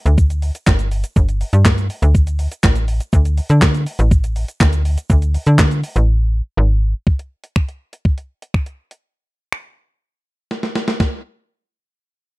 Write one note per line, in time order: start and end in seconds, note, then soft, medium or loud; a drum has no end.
0.06 0.51 D2 loud
0.06 closed hi-hat medium
0.06 shaker medium
0.18 kick loud
0.18 shaker medium
0.30 closed hi-hat medium
0.30 shaker medium
0.42 open hi-hat medium
0.42 shaker medium
0.55 closed hi-hat medium
0.55 shaker medium
0.67 1.03 G1 medium
0.67 kick loud
0.67 snare medium
0.67 clap loud
0.67 shaker medium
0.79 closed hi-hat medium
0.79 shaker medium
0.91 open hi-hat medium
0.91 shaker medium
1.04 closed hi-hat medium
1.04 shaker medium
1.16 1.44 G1 loud
1.16 kick loud
1.16 shaker medium
1.29 closed hi-hat medium
1.29 shaker medium
1.41 open hi-hat medium
1.41 shaker medium
1.53 1.89 G2 medium
1.53 closed hi-hat medium
1.53 shaker medium
1.65 kick loud
1.65 snare loud
1.65 clap loud
1.65 shaker medium
1.78 closed hi-hat soft
1.78 shaker soft
1.90 open hi-hat medium
1.90 shaker medium
2.02 2.48 D2 loud
2.02 closed hi-hat medium
2.02 shaker medium
2.15 kick loud
2.15 shaker medium
2.27 closed hi-hat medium
2.27 shaker medium
2.39 open hi-hat medium
2.39 shaker medium
2.52 closed hi-hat medium
2.52 shaker medium
2.63 3.00 A1 loud
2.63 kick loud
2.63 snare medium
2.63 clap loud
2.63 shaker medium
2.76 closed hi-hat medium
2.76 shaker medium
2.88 open hi-hat medium
2.88 shaker medium
3.00 closed hi-hat medium
3.00 shaker medium
3.13 3.40 D2 loud
3.13 kick loud
3.13 shaker medium
3.25 closed hi-hat medium
3.25 shaker medium
3.38 open hi-hat medium
3.38 shaker medium
3.49 3.86 D3 medium
3.49 closed hi-hat medium
3.49 shaker medium
3.62 kick loud
3.62 snare loud
3.62 clap loud
3.62 shaker medium
3.74 closed hi-hat soft
3.74 shaker medium
3.86 open hi-hat medium
3.86 shaker medium
3.99 4.45 A1 loud
3.99 closed hi-hat medium
3.99 shaker medium
4.11 kick loud
4.11 shaker medium
4.24 closed hi-hat medium
4.24 shaker medium
4.36 open hi-hat medium
4.36 shaker medium
4.48 closed hi-hat medium
4.48 shaker medium
4.60 4.97 D2 loud
4.60 kick loud
4.60 snare medium
4.60 clap loud
4.60 shaker medium
4.73 closed hi-hat medium
4.73 shaker medium
4.85 open hi-hat medium
4.85 shaker medium
4.98 closed hi-hat medium
4.98 shaker medium
5.10 5.37 D2 loud
5.10 kick loud
5.10 shaker medium
5.22 closed hi-hat medium
5.22 shaker medium
5.34 open hi-hat medium
5.34 shaker medium
5.46 5.83 D3 loud
5.46 closed hi-hat medium
5.46 shaker medium
5.59 kick loud
5.59 snare loud
5.59 clap loud
5.59 shaker medium
5.71 closed hi-hat soft
5.71 shaker soft
5.84 open hi-hat medium
5.84 shaker medium
5.96 6.41 A1 loud
5.96 closed hi-hat medium
5.96 shaker medium
6.57 6.94 G#1 loud
7.07 kick loud
7.19 closed hi-hat soft
7.44 closed hi-hat medium
7.56 finger snap loud
7.56 kick loud
7.68 closed hi-hat soft
7.93 closed hi-hat medium
8.05 kick loud
8.18 closed hi-hat medium
8.42 closed hi-hat medium
8.54 finger snap loud
8.54 kick loud
8.66 closed hi-hat medium
8.91 closed hi-hat medium
9.52 finger snap loud
10.51 snare medium
10.63 snare medium
10.75 snare medium
10.88 snare medium
11.00 kick loud
11.00 snare medium